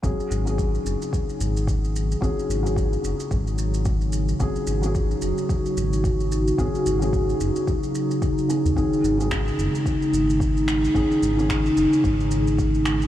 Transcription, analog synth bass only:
0.04 0.14 G#1 medium
0.30 0.79 G#1 medium
0.85 0.96 F#1 medium
1.40 2.16 G#1 medium
2.22 2.32 G#1 loud
2.49 2.97 G#1 medium
3.03 3.14 F#1 medium
3.31 4.34 G#1 medium
4.40 4.51 G#1 medium
4.67 5.15 G#1 medium
5.22 5.32 F#1 medium
5.77 6.52 G#1 medium
6.59 6.69 G#1 loud
6.86 7.34 G#1 medium
7.40 7.50 F#1 medium
8.65 8.73 D#2 medium
8.77 8.87 G#1 medium
9.03 9.52 G#1 medium
9.58 9.68 F#1 medium
10.13 10.88 G#1 medium
10.95 11.05 G#1 loud
11.22 11.70 G#1 medium
11.77 11.87 F#1 medium
12.04 13.07 G#1 medium

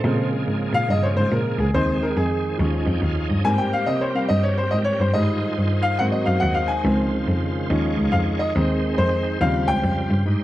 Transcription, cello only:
0.04 0.40 A#2 loud
0.47 0.69 G#2 medium
0.73 0.86 A#2 medium
0.89 1.12 G2 medium
1.16 1.29 G#2 loud
1.32 1.54 A#2 medium
1.59 1.72 C#2 medium
1.74 2.11 D#2 medium
2.17 2.53 F2 medium
2.59 2.82 D#2 medium
2.86 3.00 F2 medium
3.02 3.25 D#2 medium
3.29 3.42 G2 medium
3.44 3.81 G#2 loud
3.87 4.24 C3 medium
4.30 4.66 G2 medium
4.73 4.96 G#2 medium
4.99 5.13 G2 loud
5.15 5.51 G#2 medium
5.58 5.94 G2 medium
6.00 6.23 G#2 medium
6.27 6.40 F#2 medium
6.42 6.79 D#2 medium
6.85 7.21 C#2 loud
7.28 7.64 F2 medium
7.70 7.93 D#2 loud
7.97 8.11 C#2 medium
8.13 8.49 F2 medium
8.55 8.92 D#2 loud
8.98 9.34 F2 medium
9.41 9.63 D#2 loud
9.67 9.81 C#2 medium
9.83 10.06 F2 medium
10.10 10.23 G2 loud
10.26 10.44 G#2 medium

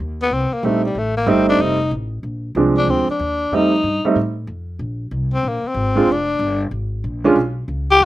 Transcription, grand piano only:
0.63 0.81 G3 soft
0.63 0.82 A3 soft
0.63 0.82 C4 soft
0.63 0.82 D#4 medium
1.26 1.75 G3 medium
1.26 1.75 A3 medium
1.26 1.75 C4 medium
1.26 1.76 D#4 medium
2.56 3.04 F3 medium
2.56 3.04 G#3 medium
2.56 3.05 C4 medium
2.56 3.05 D4 medium
3.53 3.71 G3 soft
3.53 3.71 A3 medium
3.53 3.71 C4 soft
3.53 3.71 D#4 medium
4.05 4.15 G3 medium
4.05 4.15 A3 medium
4.05 4.15 C4 medium
4.05 4.16 D#4 medium
5.95 6.06 G#3 medium
5.95 6.07 C4 medium
5.95 6.07 D4 soft
5.95 6.07 F4 medium
7.24 7.35 G#3 medium
7.24 7.35 C#4 medium
7.24 7.35 D4 medium
7.24 7.36 F4 medium

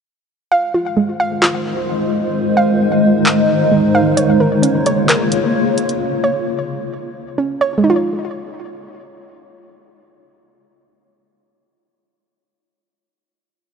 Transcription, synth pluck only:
0.52 1.19 F5 loud
0.74 1.41 F4 medium
0.97 2.34 G#3 medium
1.20 2.56 F5 loud
1.42 2.80 F4 medium
2.57 3.94 F5 loud
3.72 4.17 G#3 medium
3.95 4.18 F5 medium
4.17 4.85 C#5 loud
4.40 5.08 A#4 medium
4.62 6.00 C#4 medium
4.86 6.23 C#5 loud
5.09 6.46 A#4 medium
6.24 7.60 C#5 medium
7.38 7.84 C#4 medium
7.61 7.84 C#5 loud
7.78 11.18 G#3 medium
7.84 11.24 D#4 medium
7.90 11.30 F4 medium

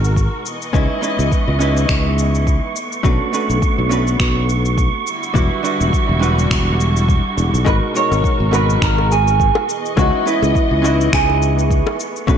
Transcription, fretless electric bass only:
0.00 0.27 G#1 medium
0.74 0.86 C#2 medium
1.19 1.29 C#2 medium
1.48 1.85 C#2 medium
1.89 2.57 C#2 medium
3.04 3.17 B1 medium
3.49 3.59 B1 medium
3.78 4.15 B1 medium
4.20 4.88 B1 loud
5.35 5.48 E1 medium
5.80 5.90 E1 medium
6.09 6.46 E1 medium
6.51 7.19 E1 medium
7.37 7.50 E1 medium
7.54 7.63 B1 medium
7.66 7.79 G#1 medium
8.11 8.21 G#1 medium
8.40 8.77 G#1 medium
8.82 9.50 G#1 medium
9.97 10.10 C#2 medium
10.42 10.52 C#2 medium
10.71 11.08 C#2 medium
11.13 11.81 C#2 loud
12.28 12.38 B1 medium

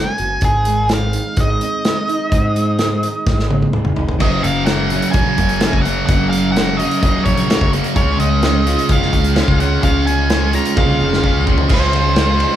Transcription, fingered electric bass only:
0.19 0.38 F#1 medium
0.42 1.16 G#1 medium
1.37 1.56 G#1 medium
2.32 3.05 G#2 medium
3.26 3.63 G#1 medium
3.74 3.95 D#1 medium
3.98 4.19 F1 medium
4.21 4.39 F#1 medium
4.44 4.99 F#1 loud
5.14 5.33 A#1 medium
5.38 5.66 F#1 loud
5.73 6.01 F#1 medium
6.08 6.81 F#1 medium
7.03 7.21 D#1 loud
7.26 7.53 A#1 loud
7.61 7.79 F#1 loud
7.96 8.14 C#2 loud
8.19 8.74 C#2 medium
8.89 9.08 F1 medium
9.13 9.41 C#2 loud
9.48 9.75 C#2 medium
9.83 10.56 C#2 medium
10.77 10.95 C2 medium
11.01 11.28 F1 loud
11.36 11.54 C#2 loud
11.70 12.43 C#2 loud

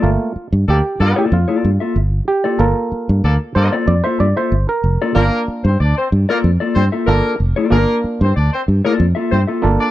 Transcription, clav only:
0.00 0.32 A3 medium
0.00 0.32 A#3 medium
0.00 0.47 F4 medium
0.00 0.95 A4 medium
0.70 0.99 G4 medium
1.02 1.17 F4 medium
1.19 1.25 G4 medium
1.33 2.25 F4 medium
2.28 2.61 G4 medium
2.59 5.12 A#3 medium
2.59 5.12 F4 medium
2.59 5.11 A4 medium
2.59 3.52 A#4 medium
3.55 3.85 C5 loud
3.88 4.05 D5 loud
4.04 4.18 C5 loud
4.20 4.36 D5 loud
4.37 4.67 C5 loud
4.69 5.13 A#4 medium
5.15 5.69 A#3 medium
5.15 5.70 D4 medium
5.15 5.70 F4 medium
5.15 5.70 A#4 medium
7.07 7.34 A#3 medium
7.07 7.35 D4 medium
7.07 7.35 F4 medium
7.07 7.35 A4 loud
7.70 8.25 A#3 loud
7.70 8.25 D4 medium
7.70 8.26 F4 medium
7.70 7.79 G#4 medium
7.79 8.29 A#4 loud
9.62 9.90 A#3 loud
9.62 9.90 D4 medium
9.62 9.90 F4 medium
9.62 9.91 A4 medium

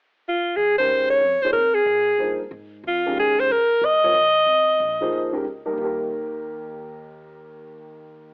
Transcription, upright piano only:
0.79 1.21 D#3 soft
0.79 1.21 G#3 soft
0.79 1.20 C#4 soft
0.79 1.21 G4 soft
0.79 1.21 A#4 medium
1.44 1.54 F3 medium
1.44 1.54 A#3 soft
1.44 1.54 D#4 soft
1.44 1.54 G#4 soft
1.44 1.55 C#5 medium
2.19 2.38 F3 soft
2.19 2.39 A#3 soft
2.19 2.39 D#4 soft
2.19 2.39 G#4 soft
2.19 2.39 C5 medium
3.06 3.48 D#3 medium
3.06 3.48 G#3 medium
3.06 3.48 C#4 medium
3.06 3.48 G4 medium
3.06 3.48 A#4 medium
4.04 4.14 G3 medium
4.04 4.14 C4 medium
4.04 4.14 F4 medium
4.04 4.14 A#4 medium
4.04 4.14 C#5 medium
5.01 5.31 F3 medium
5.01 5.32 A#3 medium
5.01 5.32 D#4 medium
5.01 5.32 G#4 medium
5.01 5.32 C5 medium
5.32 5.43 D#3 medium
5.32 5.44 G#3 soft
5.32 5.44 C#4 medium
5.32 5.44 G4 medium
5.32 5.44 A#4 medium
5.65 6.08 G3 medium
5.65 5.77 A#3 medium
5.65 6.08 D#4 medium
5.65 5.79 G4 soft
5.65 5.83 A#4 medium
5.73 8.34 D#2 medium
5.73 8.34 D#3 medium
5.79 8.34 A#3 medium
5.79 8.34 G4 medium
5.85 8.34 A#4 medium

